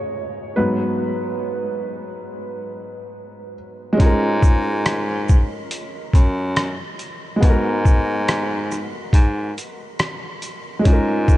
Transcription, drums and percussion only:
4.00 kick medium
4.00 closed hi-hat medium
4.43 kick loud
4.43 shaker medium
4.86 cross-stick loud
4.86 closed hi-hat medium
5.29 kick medium
5.29 shaker soft
5.71 closed hi-hat medium
6.13 kick medium
6.13 closed hi-hat soft
6.13 shaker soft
6.56 cross-stick loud
6.56 closed hi-hat medium
6.99 closed hi-hat soft
6.99 shaker soft
7.43 kick loud
7.43 closed hi-hat medium
7.85 kick loud
7.85 shaker medium
8.28 cross-stick loud
8.28 closed hi-hat medium
8.71 cross-stick soft
8.71 shaker soft
9.13 kick medium
9.13 closed hi-hat medium
9.58 closed hi-hat soft
9.58 shaker soft
9.99 cross-stick loud
9.99 closed hi-hat medium
10.42 closed hi-hat soft
10.42 shaker soft
10.85 kick loud
10.85 closed hi-hat medium
11.28 kick medium
11.28 shaker medium

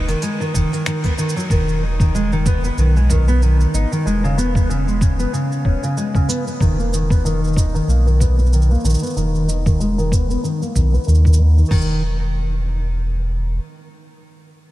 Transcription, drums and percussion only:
0.08 open hi-hat soft
0.08 cabasa soft
0.22 open hi-hat medium
0.22 cabasa soft
0.41 cabasa soft
0.54 kick medium
0.54 cabasa medium
0.73 cabasa soft
0.86 finger snap medium
0.86 open hi-hat medium
0.86 cabasa soft
1.04 kick medium
1.04 open hi-hat soft
1.04 cabasa soft
1.18 cabasa medium
1.29 cabasa medium
1.37 cabasa soft
1.40 cabasa soft
1.50 kick loud
1.50 cabasa soft
1.69 cabasa soft
2.00 kick medium
2.00 cabasa soft
2.15 cabasa soft
2.32 cabasa soft
2.46 kick loud
2.46 cabasa medium
2.64 cabasa soft
2.78 cabasa soft
2.97 cabasa soft
3.10 kick medium
3.10 cabasa medium
3.28 cabasa soft
3.42 cabasa soft
3.61 cabasa soft
3.75 cabasa medium
3.93 cabasa soft
4.07 cabasa soft
4.25 cabasa soft
4.39 cabasa medium
4.55 kick medium
4.55 cabasa soft
4.71 cabasa soft
4.88 cabasa soft
5.01 kick loud
5.01 cabasa medium
5.20 cabasa soft
5.34 cabasa soft
5.52 cabasa soft
5.65 kick medium
5.84 cabasa soft
5.97 cabasa soft
6.15 kick medium
6.15 cabasa soft
6.30 cabasa medium
6.47 cabasa soft
6.61 kick loud
6.61 cabasa soft
6.80 cabasa soft
6.94 cabasa medium
7.10 kick medium
7.10 cabasa soft
7.26 cabasa soft
7.44 cabasa soft
7.47 cabasa soft
7.53 kick medium
7.53 cabasa soft
7.58 cabasa medium
7.69 cabasa soft
7.76 cabasa soft
7.90 cabasa soft
8.08 cabasa soft
8.20 kick medium
8.20 cabasa medium
8.39 cabasa soft
8.46 cabasa soft
8.53 cabasa soft
8.62 cabasa soft
8.71 cabasa soft
8.75 cabasa soft
8.80 cabasa soft
8.85 cabasa medium
8.90 cabasa medium
8.92 cabasa soft
8.94 cabasa soft
8.96 cabasa soft
8.99 cabasa soft
9.03 cabasa soft
9.06 cabasa soft
9.10 cabasa soft
9.14 cabasa soft
9.17 cabasa soft
9.35 cabasa soft
9.49 cabasa medium
9.66 kick loud
9.66 cabasa soft
9.81 cabasa soft
9.99 cabasa soft
10.12 kick medium
10.12 cabasa medium
10.31 cabasa soft
10.45 cabasa soft
10.62 cabasa soft
10.76 kick soft
10.76 cabasa medium
10.94 cabasa soft
11.04 cabasa soft
11.09 cabasa soft
11.15 cabasa soft
11.25 kick medium
11.25 cabasa soft
11.33 cabasa medium
11.58 cabasa soft
11.65 cabasa soft
11.71 kick medium
11.71 crash medium
11.71 cabasa soft
11.82 cabasa soft

